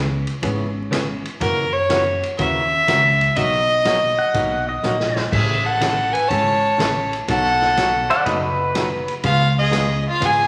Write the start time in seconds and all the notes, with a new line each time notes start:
Already playing: C#2
0.27 ride
0.42 G#1 C#3 E3 B3 C#4 G#4, kick, ride
0.91 C#3 E3 B3 C#4 G#4, snare, hi-hat pedal, ride
1.25 ride
1.40 F#2 C#3 E3 A#3 C#4 F#4 A#4, kick, ride
1.73 C#5
1.89 C#3 E3 A#3 C#4 F#4, snare, hi-hat pedal, ride
2.23 ride
2.38 D#2 C#3 E3 A#3 C#4 F#4 E5, kick, ride
2.88 C#2 C#3 E3 A#3 C#4 F#4, snare, hi-hat pedal, ride
3.21 ride
3.36 B1 B2 F#3 A#3 D#4 F#4 D#5, kick, ride
3.85 B2 F#3 A#3 D#4 F#4, snare, hi-hat pedal, ride
4.19 F#5
4.34 B1 B2 F#3 A#3 D#4 F#4, kick, ride
4.69 D#5
4.83 A#1 B2 F#3 A#3 D#4 F#4, snare, hi-hat pedal
5.00 snare
5.16 snare
5.32 A1 C#3 E3 A3 C#4 G#4 E5, kick, crash
5.65 A4 F#5
5.81 C#3 E3 A3 C#4 G#4, snare, hi-hat pedal, ride
6.13 B4 G#5, ride
6.28 G#1 C#3 E3 A3 C#4 C#5 A5, kick, ride
6.32 G#4
6.78 A1 C#3 E3 A3 C#4 G#4, snare, hi-hat pedal, ride
7.13 ride
7.28 B1 B2 F#3 A3 D#4 F#4 A4 F#5, kick, ride
7.62 snare
7.77 B2 F#3 A3 D#4 F#4, snare, hi-hat pedal, ride
8.10 D5 F#5, ride
8.25 F#1 B2 F#3 A3 D#4 F#4 B4 D#5, kick, ride
8.42 B4
8.75 B2 F#3 A3 D#4 F#4, snare, hi-hat pedal, ride
9.08 ride
9.23 C#2 C#3 G#3 B3 F4 G#4 F5, kick, ride
9.59 G#4 D#5
9.71 C#3 G#3 B3 F4 G#4, snare, hi-hat pedal, ride
10.08 F4 F5
10.20 G#1 C#3 G#3 B3 F4 G#4, kick, ride
10.26 G#5